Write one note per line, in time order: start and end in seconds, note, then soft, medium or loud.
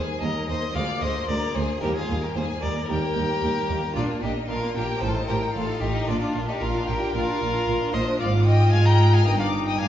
0.00 0.18 D#2 medium
0.00 0.70 D#4 medium
0.00 0.20 G#4 medium
0.00 0.71 A#4 medium
0.00 0.21 G#5 loud
0.08 0.21 A#3 medium
0.20 0.45 D#2 medium
0.20 0.29 D#2 medium
0.20 0.30 D#2 medium
0.20 0.34 G3 medium
0.20 0.48 A#4 medium
0.20 0.47 D#5 medium
0.20 0.48 A#5 loud
0.34 0.48 A#3 medium
0.47 0.72 D#2 medium
0.47 0.56 D#2 medium
0.47 0.62 G3 medium
0.47 0.74 C5 medium
0.47 0.76 D#5 medium
0.47 0.75 C6 loud
0.62 0.75 A#3 medium
0.70 1.76 A#3 medium
0.70 1.77 F4 medium
0.70 1.78 G#4 medium
0.70 1.01 D5 medium
0.75 0.99 D2 medium
0.75 0.83 D2 medium
0.75 0.84 D2 medium
0.75 0.88 G#3 medium
0.75 1.03 F5 medium
0.75 1.02 D6 loud
0.89 1.02 A#3 medium
1.01 1.26 D2 medium
1.01 1.10 D2 medium
1.01 1.15 G#3 medium
1.01 1.28 C5 loud
1.01 1.28 D#5 medium
1.01 1.29 C6 loud
1.16 1.29 A#3 medium
1.28 1.52 D2 medium
1.28 1.36 D2 medium
1.28 1.41 G#3 medium
1.28 1.54 A#4 medium
1.28 1.57 D5 loud
1.28 1.55 A#5 loud
1.42 1.55 A#3 medium
1.54 1.79 D2 medium
1.54 1.64 D2 medium
1.54 1.69 G#3 medium
1.54 1.82 G#4 medium
1.54 1.81 C5 medium
1.54 1.82 G#5 loud
1.69 1.82 A#3 medium
1.77 3.89 A#3 medium
1.77 3.90 D#4 medium
1.77 3.90 G4 medium
1.77 1.95 G4 medium
1.81 2.06 D#2 medium
1.81 1.90 D#2 medium
1.81 1.91 D#2 medium
1.81 1.94 G3 medium
1.81 1.95 A#4 medium
1.81 1.88 G5 loud
1.95 2.09 A#3 medium
1.95 2.21 F4 medium
1.95 2.23 G#4 medium
1.95 2.23 F5 loud
2.09 2.17 D#2 medium
2.09 2.33 D#2 medium
2.09 2.18 D#2 medium
2.09 2.22 G3 medium
2.22 2.35 A#3 medium
2.22 2.35 G4 medium
2.22 2.35 A#4 medium
2.22 2.37 G5 loud
2.34 2.43 D#2 medium
2.34 2.59 D#2 medium
2.34 2.44 D#2 medium
2.34 2.47 G3 medium
2.34 2.61 G#4 medium
2.34 2.43 C5 medium
2.34 2.62 G#5 loud
2.48 2.61 A#3 medium
2.62 2.70 D#2 medium
2.62 2.86 D#2 medium
2.62 2.70 D#2 medium
2.62 2.75 G3 medium
2.62 2.89 A#4 medium
2.62 2.87 D5 medium
2.62 2.71 A#5 loud
2.75 2.89 A#3 medium
2.88 2.96 D#2 medium
2.88 2.97 D#2 medium
2.88 3.13 D#2 medium
2.88 3.01 G3 medium
2.88 3.95 G4 loud
2.88 3.93 A#4 loud
2.88 3.94 G5 loud
3.02 3.15 A#3 medium
3.15 3.23 D#2 medium
3.15 3.39 D#2 medium
3.15 3.24 D#2 medium
3.15 3.29 G3 medium
3.29 3.42 A#3 medium
3.42 3.66 D#2 medium
3.42 3.50 D#2 medium
3.42 3.55 G3 medium
3.56 3.69 A#3 medium
3.68 3.92 D#2 medium
3.68 3.77 D#2 medium
3.68 3.78 D#2 medium
3.68 3.82 G3 medium
3.82 3.95 A#3 medium
3.90 4.96 A#3 medium
3.90 4.96 F4 medium
3.94 4.03 A#1 medium
3.94 4.19 A#2 medium
3.94 4.04 A#2 medium
3.94 4.21 D4 medium
3.94 4.08 D4 medium
3.94 4.21 F4 medium
3.94 4.04 D5 loud
4.09 4.22 A#3 medium
4.22 4.30 A#1 medium
4.22 4.46 A#2 medium
4.22 4.30 A#2 medium
4.22 4.35 D4 medium
4.22 4.48 D#4 medium
4.22 4.30 G4 medium
4.22 4.48 D#5 medium
4.36 4.49 A#3 medium
4.48 4.57 A#1 medium
4.48 4.72 A#2 medium
4.48 4.57 A#2 medium
4.48 4.61 D4 medium
4.48 4.75 F4 medium
4.48 4.74 A#4 medium
4.48 4.75 F5 loud
4.62 4.75 A#3 medium
4.74 4.84 A#1 medium
4.74 4.99 A#2 medium
4.74 4.84 A#2 medium
4.74 4.88 D4 medium
4.74 5.01 G4 medium
4.74 5.03 A#4 medium
4.74 5.02 G5 loud
4.88 5.01 A#3 medium
4.96 6.02 C4 medium
4.96 6.02 D#4 medium
4.96 6.03 F4 medium
5.00 5.10 A1 medium
5.00 5.25 A2 medium
5.00 5.11 A2 medium
5.00 5.14 F4 medium
5.00 5.10 A4 medium
5.00 5.27 C5 loud
5.00 5.29 A5 loud
5.15 5.28 D#4 medium
5.27 5.36 A1 medium
5.27 5.52 A2 medium
5.27 5.37 A2 medium
5.27 5.41 F4 medium
5.27 5.37 G4 medium
5.27 5.54 A#4 medium
5.27 5.55 G5 loud
5.41 5.54 D#4 medium
5.54 5.63 A1 medium
5.54 5.79 A2 medium
5.54 5.64 A2 medium
5.54 5.67 F4 medium
5.54 5.81 F4 medium
5.54 5.82 A4 loud
5.54 5.81 F5 loud
5.68 5.81 D#4 medium
5.81 5.89 A1 medium
5.81 6.05 A2 medium
5.81 5.90 A2 medium
5.81 6.07 D#4 medium
5.81 5.95 F4 medium
5.81 6.10 G4 medium
5.81 6.08 D#5 loud
5.95 6.08 D#4 medium
6.04 8.14 A#3 medium
6.04 8.15 D4 medium
6.04 8.16 F4 medium
6.04 6.20 F4 medium
6.08 6.16 A#1 medium
6.08 6.32 A#2 medium
6.08 6.16 A#2 medium
6.08 6.21 D4 medium
6.08 6.20 F4 medium
6.08 6.19 D5 loud
6.20 6.34 D4 medium
6.20 6.48 D4 medium
6.20 6.47 F4 medium
6.20 6.28 D5 loud
6.34 6.42 A#1 medium
6.34 6.43 A#2 medium
6.34 6.58 A#2 medium
6.34 6.48 F4 medium
6.48 6.61 D4 medium
6.48 6.61 D#4 medium
6.48 6.62 G4 medium
6.48 6.54 D#5 loud
6.60 6.69 A#1 medium
6.60 6.84 A#2 medium
6.60 6.69 A#2 medium
6.60 6.73 F4 medium
6.60 6.87 F4 medium
6.60 6.87 A#4 medium
6.60 6.87 F5 loud
6.74 6.87 D4 medium
6.87 6.95 A#1 medium
6.87 7.11 A#2 medium
6.87 6.96 A#2 medium
6.87 7.00 F4 medium
6.87 7.14 G4 medium
6.87 7.13 A#4 medium
6.87 7.14 G5 loud
7.01 7.14 D4 medium
7.14 7.22 A#1 medium
7.14 7.38 A#2 medium
7.14 7.23 A#2 medium
7.14 7.92 F4 loud
7.14 7.26 F4 medium
7.14 7.95 A#4 loud
7.14 7.94 F5 loud
7.27 7.40 D4 medium
7.40 7.49 A#1 medium
7.40 7.64 A#2 medium
7.40 7.49 A#2 medium
7.40 7.54 F4 medium
7.54 7.67 D4 medium
7.66 7.74 A#1 medium
7.66 7.75 A#2 medium
7.66 7.91 A#2 medium
7.66 7.80 F4 medium
7.82 7.94 D4 medium
7.93 8.01 A#1 medium
7.93 8.02 A#2 medium
7.93 8.18 A#2 medium
7.93 8.07 F4 medium
7.93 8.19 C5 loud
7.93 8.19 D#5 loud
7.93 8.01 C6 loud
8.07 8.20 D4 medium
8.16 9.21 A#3 medium
8.16 9.22 F4 medium
8.16 8.46 F5 medium
8.16 8.46 D6 loud
8.20 8.69 G#1 medium
8.20 8.70 G#2 medium
8.20 8.69 G#2 medium
8.20 9.22 F4 medium
8.20 8.28 D5 medium
8.45 8.73 D#5 loud
8.45 8.72 G5 loud
8.45 8.72 D#6 loud
8.72 9.26 G#2 medium
8.72 9.26 G#3 medium
8.72 9.22 G#3 medium
8.72 8.86 F5 loud
8.72 8.88 G#5 loud
8.72 8.86 F6 loud
8.85 9.13 G5 loud
8.85 9.15 A#5 loud
8.85 9.12 G6 loud
9.13 9.26 F5 loud
9.13 9.26 G#5 loud
9.13 9.26 F6 loud
9.22 9.88 A#3 medium
9.22 9.88 D#4 medium
9.22 9.88 G4 medium
9.22 9.39 D#5 loud
9.26 9.78 G1 medium
9.26 9.78 G2 medium
9.26 9.75 G2 medium
9.26 9.79 D#4 medium
9.26 9.38 G5 loud
9.26 9.32 D#6 loud
9.39 9.48 D5 loud
9.39 9.47 F5 loud
9.39 9.66 D6 loud
9.66 9.79 D#5 medium
9.66 9.80 G5 loud
9.66 9.80 D#6 loud
9.78 9.88 G2 medium
9.78 9.88 G3 medium
9.78 9.88 D4 loud
9.78 9.88 F5 loud
9.78 9.88 G#5 loud
9.78 9.88 F6 loud